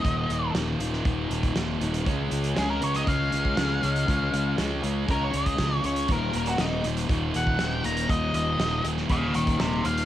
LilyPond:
<<
  \new Staff \with { instrumentName = "Lead electric guitar" } { \time 4/4 \key des \lydian \tempo 4 = 119 ees''4 r2. | r4 aes'16 bes'16 des''16 ees''16 f''2~ | f''4 r4 bes'16 des''16 ees''4 des''8 | bes'8 bes'16 ges'16 ees'8 r4 ges''4 bes''8 |
ees''8 ees''4 r8 <des'' f''>8 <bes' ees''>8 <g' c''>8 f''8 | }
  \new Staff \with { instrumentName = "Distorted electric guitar" } { \clef bass \time 4/4 \key des \lydian <ees, bes, ees>4 <ees, bes, ees>8 <ees, bes, ees>8 <ees, bes, ees>4 <ees, bes, ees>8 <ees, bes, ees>8 | <des aes des'>4 <des aes des'>8 <des aes des'>8 <des aes des'>4 <des aes des'>8 <des aes des'>8 | <des aes des'>4 <des aes des'>8 <des aes des'>8 <des aes des'>4 <des aes des'>8 <des aes des'>8 | <ees, bes, ees>4 <ees, bes, ees>8 <ees, bes, ees>8 <ees, bes, ees>4 <ees, bes, ees>8 <ees, bes, ees>8 |
<ees, bes, ees>4 <ees, bes, ees>8 <ees, bes, ees>8 <ees, bes, ees>4 <ees, bes, ees>8 <ees, bes, ees>8 | }
  \new Staff \with { instrumentName = "Distorted electric guitar" } { \clef bass \time 4/4 \key des \lydian <ees, bes, ees>4 <ees, bes, ees>8 <ees, bes, ees>8 <ees, bes, ees>4 <ees, bes, ees>8 <ees, bes, ees>8 | <des aes des'>4 <des aes des'>8 <des aes des'>8 <des aes des'>4 <des aes des'>8 <des aes des'>8 | <des aes des'>4 <des aes des'>8 <des aes des'>8 <des aes des'>4 <des aes des'>8 <des aes des'>8 | <ees, bes, ees>4 <ees, bes, ees>8 <ees, bes, ees>8 <ees, bes, ees>4 <ees, bes, ees>8 <ees, bes, ees>8 |
<ees, bes, ees>4 <ees, bes, ees>8 <ees, bes, ees>8 <ees, bes, ees>4 <ees, bes, ees>8 <ees, bes, ees>8 | }
  \new Staff \with { instrumentName = "Fingered electric bass" } { \clef bass \time 4/4 \key des \lydian ees,,8 ees,,8 ees,,8 ees,,8 ees,,8 ees,,8 ees,,8 ees,,8 | des,8 des,8 des,8 des,8 des,8 des,8 des,8 des,8 | des,8 des,8 des,8 des,8 des,8 des,8 des,8 des,8 | ees,,8 ees,,8 ees,,8 ees,,8 ees,,8 ees,,8 ees,,8 ees,,8 |
ees,,8 ees,,8 ees,,8 ees,,8 ees,,8 ees,,8 ees,,8 ees,,8 | }
  \new DrumStaff \with { instrumentName = "Drums" } \drummode { \time 4/4 <hh bd>8 hh8 <hh sn>8 hh16 sn16 <hh bd>8 hh16 <hh bd>16 <hh sn>8 hh16 hh16 | <hh bd>8 hh16 hh16 <hh sn>8 hh16 <hh sn>16 <hh bd>8 hh16 bd16 <hh sn>8 hh16 hh16 | <hh bd>8 hh8 <hh sn>8 hh8 <hh bd>8 hh16 <hh bd>16 <hh bd sn>8 hh16 hh16 | <hh bd>8 hh16 hh16 <hh sn>8 hh16 <hh sn>16 <hh bd>8 hh16 bd16 <hh sn>8 hh16 hh16 |
<hh bd>8 hh8 <hh sn>8 hh16 sn16 <hh bd>8 hh16 <hh bd>16 <hh sn>8 hh16 hh16 | }
>>